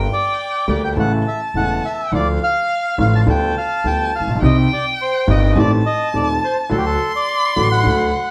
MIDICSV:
0, 0, Header, 1, 5, 480
1, 0, Start_track
1, 0, Tempo, 574163
1, 1777, Time_signature, 4, 2, 24, 8
1, 6945, End_track
2, 0, Start_track
2, 0, Title_t, "Violin"
2, 0, Program_c, 0, 40
2, 0, Note_on_c, 0, 79, 67
2, 780, Note_off_c, 0, 79, 0
2, 813, Note_on_c, 0, 81, 70
2, 1785, Note_on_c, 0, 77, 72
2, 1798, Note_off_c, 0, 81, 0
2, 2739, Note_on_c, 0, 81, 74
2, 2752, Note_off_c, 0, 77, 0
2, 3687, Note_off_c, 0, 81, 0
2, 3692, Note_on_c, 0, 79, 86
2, 4613, Note_off_c, 0, 79, 0
2, 4647, Note_on_c, 0, 81, 82
2, 5610, Note_on_c, 0, 84, 98
2, 5622, Note_off_c, 0, 81, 0
2, 6945, Note_off_c, 0, 84, 0
2, 6945, End_track
3, 0, Start_track
3, 0, Title_t, "Bandoneon"
3, 0, Program_c, 1, 23
3, 109, Note_on_c, 1, 74, 71
3, 549, Note_off_c, 1, 74, 0
3, 578, Note_on_c, 1, 74, 55
3, 688, Note_off_c, 1, 74, 0
3, 705, Note_on_c, 1, 79, 60
3, 757, Note_off_c, 1, 79, 0
3, 834, Note_on_c, 1, 78, 69
3, 938, Note_off_c, 1, 78, 0
3, 1069, Note_on_c, 1, 76, 57
3, 1175, Note_off_c, 1, 76, 0
3, 1311, Note_on_c, 1, 78, 65
3, 1549, Note_on_c, 1, 76, 58
3, 1552, Note_off_c, 1, 78, 0
3, 1767, Note_off_c, 1, 76, 0
3, 1798, Note_on_c, 1, 74, 70
3, 1902, Note_off_c, 1, 74, 0
3, 2035, Note_on_c, 1, 77, 83
3, 2470, Note_off_c, 1, 77, 0
3, 2518, Note_on_c, 1, 77, 65
3, 2628, Note_off_c, 1, 77, 0
3, 2637, Note_on_c, 1, 81, 67
3, 2685, Note_off_c, 1, 81, 0
3, 2759, Note_on_c, 1, 79, 67
3, 2968, Note_off_c, 1, 79, 0
3, 2992, Note_on_c, 1, 77, 61
3, 3227, Note_off_c, 1, 77, 0
3, 3234, Note_on_c, 1, 79, 63
3, 3445, Note_off_c, 1, 79, 0
3, 3474, Note_on_c, 1, 77, 60
3, 3685, Note_off_c, 1, 77, 0
3, 3716, Note_on_c, 1, 75, 65
3, 3817, Note_off_c, 1, 75, 0
3, 3955, Note_on_c, 1, 74, 69
3, 4056, Note_off_c, 1, 74, 0
3, 4192, Note_on_c, 1, 72, 67
3, 4402, Note_off_c, 1, 72, 0
3, 4432, Note_on_c, 1, 75, 66
3, 4665, Note_off_c, 1, 75, 0
3, 4675, Note_on_c, 1, 74, 77
3, 4775, Note_off_c, 1, 74, 0
3, 4899, Note_on_c, 1, 75, 67
3, 5114, Note_off_c, 1, 75, 0
3, 5146, Note_on_c, 1, 74, 59
3, 5249, Note_off_c, 1, 74, 0
3, 5385, Note_on_c, 1, 72, 58
3, 5488, Note_off_c, 1, 72, 0
3, 5611, Note_on_c, 1, 69, 62
3, 5662, Note_off_c, 1, 69, 0
3, 5666, Note_on_c, 1, 67, 54
3, 5722, Note_off_c, 1, 67, 0
3, 5734, Note_on_c, 1, 69, 66
3, 5954, Note_off_c, 1, 69, 0
3, 5983, Note_on_c, 1, 74, 64
3, 6421, Note_off_c, 1, 74, 0
3, 6450, Note_on_c, 1, 78, 75
3, 6945, Note_off_c, 1, 78, 0
3, 6945, End_track
4, 0, Start_track
4, 0, Title_t, "Grand piano"
4, 0, Program_c, 2, 0
4, 564, Note_on_c, 2, 50, 55
4, 566, Note_on_c, 2, 38, 60
4, 567, Note_on_c, 2, 55, 45
4, 568, Note_on_c, 2, 58, 45
4, 568, Note_on_c, 2, 67, 59
4, 772, Note_off_c, 2, 38, 0
4, 772, Note_off_c, 2, 55, 0
4, 773, Note_off_c, 2, 50, 0
4, 773, Note_off_c, 2, 58, 0
4, 773, Note_off_c, 2, 67, 0
4, 809, Note_on_c, 2, 49, 54
4, 810, Note_on_c, 2, 33, 60
4, 811, Note_on_c, 2, 52, 47
4, 811, Note_on_c, 2, 64, 55
4, 812, Note_on_c, 2, 45, 60
4, 813, Note_on_c, 2, 57, 48
4, 1014, Note_off_c, 2, 49, 0
4, 1015, Note_off_c, 2, 33, 0
4, 1015, Note_off_c, 2, 45, 0
4, 1015, Note_off_c, 2, 52, 0
4, 1015, Note_off_c, 2, 64, 0
4, 1016, Note_off_c, 2, 57, 0
4, 1296, Note_on_c, 2, 49, 34
4, 1299, Note_on_c, 2, 40, 42
4, 1302, Note_on_c, 2, 28, 41
4, 1303, Note_on_c, 2, 52, 33
4, 1304, Note_on_c, 2, 57, 34
4, 1304, Note_on_c, 2, 64, 40
4, 1498, Note_off_c, 2, 49, 0
4, 1500, Note_off_c, 2, 40, 0
4, 1501, Note_off_c, 2, 28, 0
4, 1502, Note_off_c, 2, 52, 0
4, 1502, Note_off_c, 2, 57, 0
4, 1502, Note_off_c, 2, 64, 0
4, 1775, Note_on_c, 2, 50, 63
4, 1776, Note_on_c, 2, 53, 52
4, 1777, Note_on_c, 2, 38, 63
4, 1778, Note_on_c, 2, 65, 57
4, 1779, Note_on_c, 2, 57, 49
4, 1978, Note_off_c, 2, 50, 0
4, 1978, Note_off_c, 2, 53, 0
4, 1979, Note_off_c, 2, 38, 0
4, 1979, Note_off_c, 2, 65, 0
4, 1980, Note_off_c, 2, 57, 0
4, 2492, Note_on_c, 2, 33, 60
4, 2493, Note_on_c, 2, 50, 56
4, 2494, Note_on_c, 2, 45, 61
4, 2495, Note_on_c, 2, 53, 49
4, 2496, Note_on_c, 2, 65, 54
4, 2498, Note_on_c, 2, 57, 46
4, 2693, Note_off_c, 2, 33, 0
4, 2694, Note_off_c, 2, 45, 0
4, 2694, Note_off_c, 2, 50, 0
4, 2694, Note_off_c, 2, 53, 0
4, 2695, Note_off_c, 2, 65, 0
4, 2696, Note_off_c, 2, 57, 0
4, 2727, Note_on_c, 2, 50, 63
4, 2732, Note_on_c, 2, 59, 48
4, 2733, Note_on_c, 2, 38, 66
4, 2733, Note_on_c, 2, 55, 50
4, 2735, Note_on_c, 2, 65, 58
4, 2931, Note_off_c, 2, 50, 0
4, 2932, Note_off_c, 2, 38, 0
4, 2932, Note_off_c, 2, 55, 0
4, 2932, Note_off_c, 2, 59, 0
4, 2933, Note_off_c, 2, 65, 0
4, 3214, Note_on_c, 2, 50, 45
4, 3216, Note_on_c, 2, 59, 33
4, 3218, Note_on_c, 2, 55, 36
4, 3219, Note_on_c, 2, 38, 42
4, 3220, Note_on_c, 2, 65, 40
4, 3414, Note_off_c, 2, 50, 0
4, 3414, Note_off_c, 2, 59, 0
4, 3415, Note_off_c, 2, 38, 0
4, 3415, Note_off_c, 2, 55, 0
4, 3416, Note_off_c, 2, 65, 0
4, 3518, Note_on_c, 2, 33, 36
4, 3573, Note_off_c, 2, 33, 0
4, 3578, Note_on_c, 2, 34, 53
4, 3633, Note_off_c, 2, 34, 0
4, 3640, Note_on_c, 2, 35, 62
4, 3694, Note_off_c, 2, 35, 0
4, 3695, Note_on_c, 2, 36, 64
4, 3695, Note_on_c, 2, 51, 56
4, 3695, Note_on_c, 2, 55, 50
4, 3698, Note_on_c, 2, 48, 71
4, 3699, Note_on_c, 2, 67, 65
4, 3700, Note_on_c, 2, 60, 53
4, 3892, Note_off_c, 2, 36, 0
4, 3892, Note_off_c, 2, 51, 0
4, 3892, Note_off_c, 2, 55, 0
4, 3893, Note_off_c, 2, 48, 0
4, 3894, Note_off_c, 2, 67, 0
4, 3895, Note_off_c, 2, 60, 0
4, 4405, Note_on_c, 2, 55, 45
4, 4407, Note_on_c, 2, 31, 69
4, 4407, Note_on_c, 2, 51, 52
4, 4410, Note_on_c, 2, 60, 48
4, 4411, Note_on_c, 2, 43, 69
4, 4413, Note_on_c, 2, 67, 60
4, 4606, Note_off_c, 2, 55, 0
4, 4607, Note_off_c, 2, 31, 0
4, 4607, Note_off_c, 2, 51, 0
4, 4608, Note_off_c, 2, 60, 0
4, 4609, Note_off_c, 2, 43, 0
4, 4610, Note_off_c, 2, 67, 0
4, 4646, Note_on_c, 2, 51, 59
4, 4647, Note_on_c, 2, 60, 50
4, 4648, Note_on_c, 2, 33, 62
4, 4648, Note_on_c, 2, 57, 49
4, 4651, Note_on_c, 2, 45, 65
4, 4654, Note_on_c, 2, 67, 66
4, 4846, Note_off_c, 2, 51, 0
4, 4846, Note_off_c, 2, 60, 0
4, 4847, Note_off_c, 2, 33, 0
4, 4847, Note_off_c, 2, 57, 0
4, 4849, Note_off_c, 2, 45, 0
4, 4850, Note_off_c, 2, 67, 0
4, 5128, Note_on_c, 2, 57, 36
4, 5129, Note_on_c, 2, 51, 40
4, 5131, Note_on_c, 2, 39, 47
4, 5132, Note_on_c, 2, 27, 46
4, 5132, Note_on_c, 2, 60, 35
4, 5135, Note_on_c, 2, 67, 40
4, 5327, Note_off_c, 2, 51, 0
4, 5327, Note_off_c, 2, 57, 0
4, 5328, Note_off_c, 2, 27, 0
4, 5328, Note_off_c, 2, 39, 0
4, 5328, Note_off_c, 2, 60, 0
4, 5330, Note_off_c, 2, 67, 0
4, 5597, Note_on_c, 2, 50, 69
4, 5598, Note_on_c, 2, 38, 62
4, 5600, Note_on_c, 2, 54, 53
4, 5600, Note_on_c, 2, 57, 50
4, 5605, Note_on_c, 2, 66, 57
4, 5803, Note_off_c, 2, 38, 0
4, 5804, Note_off_c, 2, 54, 0
4, 5804, Note_off_c, 2, 57, 0
4, 5805, Note_off_c, 2, 50, 0
4, 5806, Note_off_c, 2, 66, 0
4, 6321, Note_on_c, 2, 50, 53
4, 6322, Note_on_c, 2, 45, 59
4, 6322, Note_on_c, 2, 54, 48
4, 6322, Note_on_c, 2, 57, 47
4, 6325, Note_on_c, 2, 33, 59
4, 6327, Note_on_c, 2, 66, 56
4, 6524, Note_off_c, 2, 50, 0
4, 6525, Note_off_c, 2, 45, 0
4, 6525, Note_off_c, 2, 54, 0
4, 6525, Note_off_c, 2, 57, 0
4, 6526, Note_off_c, 2, 33, 0
4, 6528, Note_off_c, 2, 66, 0
4, 6554, Note_on_c, 2, 38, 63
4, 6554, Note_on_c, 2, 50, 62
4, 6555, Note_on_c, 2, 57, 47
4, 6556, Note_on_c, 2, 54, 48
4, 6556, Note_on_c, 2, 66, 57
4, 6762, Note_off_c, 2, 38, 0
4, 6762, Note_off_c, 2, 57, 0
4, 6763, Note_off_c, 2, 50, 0
4, 6763, Note_off_c, 2, 54, 0
4, 6763, Note_off_c, 2, 66, 0
4, 6945, End_track
5, 0, Start_track
5, 0, Title_t, "Upright bass"
5, 0, Program_c, 3, 32
5, 567, Note_on_c, 3, 38, 69
5, 772, Note_off_c, 3, 38, 0
5, 805, Note_on_c, 3, 33, 62
5, 1012, Note_off_c, 3, 33, 0
5, 1289, Note_on_c, 3, 28, 46
5, 1495, Note_off_c, 3, 28, 0
5, 1770, Note_on_c, 3, 38, 72
5, 1976, Note_off_c, 3, 38, 0
5, 2493, Note_on_c, 3, 33, 72
5, 2693, Note_off_c, 3, 33, 0
5, 2731, Note_on_c, 3, 38, 71
5, 2931, Note_off_c, 3, 38, 0
5, 3213, Note_on_c, 3, 38, 51
5, 3412, Note_off_c, 3, 38, 0
5, 3512, Note_on_c, 3, 33, 38
5, 3568, Note_off_c, 3, 33, 0
5, 3573, Note_on_c, 3, 34, 51
5, 3630, Note_off_c, 3, 34, 0
5, 3638, Note_on_c, 3, 35, 59
5, 3686, Note_off_c, 3, 35, 0
5, 3691, Note_on_c, 3, 36, 68
5, 3890, Note_off_c, 3, 36, 0
5, 4413, Note_on_c, 3, 31, 78
5, 4610, Note_off_c, 3, 31, 0
5, 4646, Note_on_c, 3, 33, 78
5, 4846, Note_off_c, 3, 33, 0
5, 5131, Note_on_c, 3, 39, 49
5, 5328, Note_off_c, 3, 39, 0
5, 5611, Note_on_c, 3, 38, 70
5, 5809, Note_off_c, 3, 38, 0
5, 6326, Note_on_c, 3, 33, 66
5, 6527, Note_off_c, 3, 33, 0
5, 6566, Note_on_c, 3, 38, 74
5, 6768, Note_off_c, 3, 38, 0
5, 6945, End_track
0, 0, End_of_file